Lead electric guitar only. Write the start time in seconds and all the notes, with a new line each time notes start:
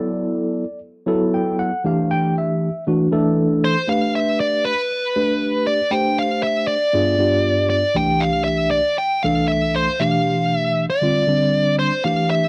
3.64 C5
3.89 F5
4.15 E5
4.40 D5
4.65 B4
5.67 D5
5.91 G5
6.19 F5
6.43 E5
6.67 D5
7.70 D5
7.96 G5
8.20 F5
8.44 E5
8.71 D5
8.98 G5
9.23 F5
9.48 E5
9.75 C5
10.00 F5
10.58 E5
10.90 D5
11.79 C5
12.04 F5
12.30 E5